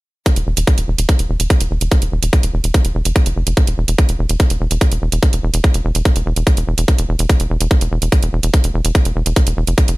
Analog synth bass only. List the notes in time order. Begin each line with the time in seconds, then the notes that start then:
0.36 E1
0.47 E1
0.57 E1
0.78 E1
0.88 E1
0.98 E1
1.19 E1
1.29 E1
1.40 E1
1.60 E1
1.71 E1
1.81 E1
2.02 E1
2.12 E1
2.23 E1
2.43 E1
2.54 E1
2.64 E1
2.85 E1
2.95 E1
3.05 F1
3.26 F1
3.36 F1
3.47 F1
3.67 E1
3.78 E1
3.88 E1
4.09 E1
4.19 E1
4.29 E1
4.50 E1
4.61 E1
4.71 E1
4.92 E1
5.02 E1
5.12 E1
5.33 E1
5.43 E1
5.54 E1
5.74 E1
5.85 E1
5.95 E1
6.16 E1
6.26 E1
6.36 E1
6.57 E1
6.67 E1
6.78 E1
6.98 E1
7.09 E1
7.19 E1
7.40 E1
7.50 E1
7.61 E1
7.81 E1
7.92 E1
8.02 E1
8.23 E1
8.33 E1
8.43 E1
8.64 E1
8.74 E1
8.85 E1
9.05 E1
9.16 E1
9.26 E1
9.47 E1
9.57 E1
9.67 F1
9.88 F1